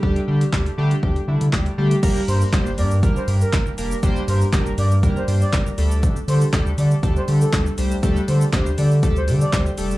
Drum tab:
CC |----------------|x---------------|----------------|----------------|
HH |-x-x-x-x-x-x-x-x|x-o-x-o-x-o-x-o-|x-o-x-o-x-o-x-o-|x-o-x-o-x-o-x-o-|
SH |----------------|xxxxxxxxxxxxxxxx|xxxxxxxxxxxxxxxx|xxxxxxxxxxxxxxxx|
CP |----x-------x---|----x-------x---|----x-------x---|----x-------x---|
SD |----o-------o---|----o-------o---|----o-------o---|----o-------o---|
BD |o---o---o---o---|o---o---o---o---|o---o---o---o---|o---o---o---o---|

CC |----------------|
HH |x-o-x-o-x-o-x-o-|
SH |xxxxxxxxxxxxxxxx|
CP |----x-------x---|
SD |----o-------o---|
BD |o---o---o---o---|